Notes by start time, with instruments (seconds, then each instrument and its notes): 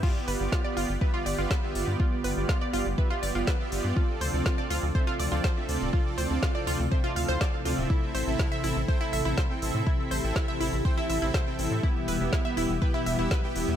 0.03 analog synth pad D3 F3 G3 B3 F4, synth pluck F4, supersaw synth F4 G4 D5, kick, crash
0.16 supersaw synth B3 F4 G4 D5
0.28 analog synth bass G1, synth pluck B4, open hi-hat
0.40 analog synth bass G1, supersaw synth B3 F4 G4 D5
0.52 synth pluck F4, kick, snare
0.64 supersaw synth B3 F4 G4 D5, synth pluck D5
0.77 analog synth bass G1, supersaw synth B3 F4 G4 D5, synth pluck F4, open hi-hat
0.89 analog synth bass G1
1.01 supersaw synth B3 F4 G4 E5, synth pluck B4, kick
1.14 supersaw synth B3 F4 G4 D5, synth pluck F4
1.26 analog synth bass G1, synth pluck D5, open hi-hat
1.38 analog synth bass G1, supersaw synth B3 F4 G4 D5, synth pluck F4
1.51 synth pluck B4, kick, snare
1.63 supersaw synth B3 F4 G4 E5
1.75 analog synth bass G1, supersaw synth B3 F4 G4 D5, open hi-hat
1.88 analog synth bass G2
2.00 supersaw synth B3 F4 G4 D5, synth pluck F4, kick
2.12 supersaw synth B3 F4 G4 D5
2.24 analog synth bass G1, synth pluck B4, open hi-hat
2.37 analog synth bass G1, supersaw synth B3 F4 G4 D5
2.49 synth pluck F4, kick, snare
2.61 supersaw synth B3 F4 G4 D5, synth pluck D5
2.73 analog synth bass G1, supersaw synth B3 F4 G4 D5, synth pluck F4, open hi-hat
2.86 analog synth bass G1
2.98 supersaw synth B3 F4 G4 E5, synth pluck B4, kick
3.10 supersaw synth B3 F4 G4 D5, synth pluck F4
3.23 analog synth bass G1, synth pluck D5, open hi-hat
3.35 analog synth bass G1, supersaw synth B3 F4 G4 D5, synth pluck F4
3.47 synth pluck B4, kick, snare
3.60 supersaw synth B3 F4 G4 E5
3.72 analog synth bass G1, supersaw synth B3 F4 G4 D5, open hi-hat
3.84 analog synth bass G2
3.96 analog synth pad C3 A3 D4 F4, supersaw synth C4 F4 A4 D5, synth pluck F4, kick
4.09 supersaw synth C4 F4 A4 D5
4.21 analog synth bass D2, synth pluck C5, open hi-hat
4.34 analog synth bass D2, supersaw synth C4 F4 A4 D5
4.46 synth pluck F4, kick, snare
4.58 supersaw synth C4 F4 A4 D5, synth pluck D5
4.70 analog synth bass D2, supersaw synth C4 F4 A4 D5, synth pluck F4, open hi-hat
4.83 analog synth bass D2
4.95 supersaw synth C4 F4 A4 E5, synth pluck C5, kick
5.07 supersaw synth C4 F4 A4 D5, synth pluck F4
5.19 analog synth bass D2, synth pluck D5, open hi-hat
5.32 analog synth bass D2, supersaw synth C4 F4 A4 D5, synth pluck F4
5.44 synth pluck C5, kick, snare
5.57 supersaw synth C4 F4 A4 E5
5.69 analog synth bass D2, supersaw synth C4 F4 A4 D5, open hi-hat
5.81 analog synth bass D1
5.93 analog synth pad E4, synth pluck F4, supersaw synth F4 A4 D5, kick
6.06 supersaw synth C4 F4 A4 D5
6.18 analog synth bass D2, synth pluck C5, open hi-hat
6.30 analog synth bass D2, supersaw synth C4 F4 A4 D5
6.42 synth pluck F4, kick, snare
6.55 supersaw synth C4 F4 A4 D5, synth pluck D5
6.67 analog synth bass D2, supersaw synth C4 F4 A4 D5, synth pluck F4, open hi-hat
6.80 analog synth bass D2
6.92 supersaw synth C4 F4 A4 E5, synth pluck C5, kick
7.04 supersaw synth C4 F4 A4 D5, synth pluck F4
7.16 analog synth bass D2, supersaw synth C4 F4 A4 F5, synth pluck F5, open hi-hat
7.29 analog synth bass D2, synth pluck C5
7.41 supersaw synth F4 A4 F5, synth pluck D5, kick, snare
7.65 analog synth bass D2, supersaw synth C4 F4 A4 D5, synth pluck F4, open hi-hat
7.78 analog synth bass D1, supersaw synth C4 F4 A4 E5
7.90 analog synth pad E3 A4, synth pluck E4, supersaw synth A4, kick
8.02 supersaw synth C4 E4 A4 E5
8.15 analog synth bass A1, synth pluck C5, open hi-hat
8.27 analog synth bass A1, supersaw synth C4 E4 A4 E5
8.39 synth pluck E4, kick, snare
8.52 supersaw synth C4 E4 A4 E5, synth pluck E5
8.64 analog synth bass A1, supersaw synth C4 E4 A4 E5, synth pluck E4, open hi-hat
8.76 analog synth bass A1
8.88 supersaw synth C4 E4 A4 G5, synth pluck C5, kick
9.01 supersaw synth C4 E4 A4 E5, synth pluck E4
9.13 analog synth bass A1, synth pluck E5, open hi-hat
9.25 analog synth bass A1, supersaw synth C4 E4 A4 E5, synth pluck E4
9.37 synth pluck C5, kick, snare
9.50 supersaw synth C4 E4 A4 G5
9.62 analog synth bass A1, supersaw synth C4 E4 A4 E5, open hi-hat
9.75 analog synth bass A2
9.87 supersaw synth C4 E4 A4 E5, synth pluck E4, analog synth pad G4, kick
9.99 supersaw synth C4 E4 A4 E5
10.11 analog synth bass A1, synth pluck C5, open hi-hat
10.24 analog synth bass A1, supersaw synth C4 E4 A4 E5
10.36 synth pluck E4, kick, snare
10.48 supersaw synth C4 E4 A4 E5, synth pluck E5
10.60 analog synth bass A1, supersaw synth C4 E4 A4 E5, synth pluck E4, open hi-hat
10.73 analog synth bass A1
10.85 supersaw synth C4 E4 A4 G5, synth pluck C5, kick
10.98 supersaw synth C4 E4 A4 E5, synth pluck E4
11.10 analog synth bass A1, synth pluck E5, open hi-hat
11.22 analog synth bass A1, supersaw synth C4 E4 A4 E5, synth pluck E4
11.34 synth pluck C5, kick, snare
11.47 supersaw synth C4 E4 A4 G5
11.59 analog synth bass A1, supersaw synth C4 E4 A4 E5, open hi-hat
11.71 analog synth bass A2
11.83 analog synth pad B2 G3 G4, supersaw synth B3 E4 G4 E5, synth pluck E4, kick
11.96 supersaw synth B3 E4 G4 E5
12.08 analog synth bass E1, synth pluck B4, open hi-hat
12.20 analog synth bass E1, supersaw synth B3 E4 G4 E5
12.33 synth pluck E4, kick, snare
12.45 supersaw synth B3 E4 G4 E5, synth pluck E5
12.57 analog synth bass E1, supersaw synth B3 E4 G4 E5, synth pluck E4, open hi-hat
12.70 analog synth bass E1
12.82 supersaw synth B3 E4 G4 G5, synth pluck B4, kick
12.94 supersaw synth B3 E4 G4 E5, synth pluck E4
13.06 analog synth bass E1, synth pluck E5, open hi-hat
13.19 analog synth bass E1, supersaw synth B3 E4 G4 E5, synth pluck E4
13.31 synth pluck B4, kick, snare
13.43 supersaw synth B3 E4 G4 G5
13.55 analog synth bass E1, supersaw synth B3 E4 G4 E5, open hi-hat
13.68 analog synth bass E2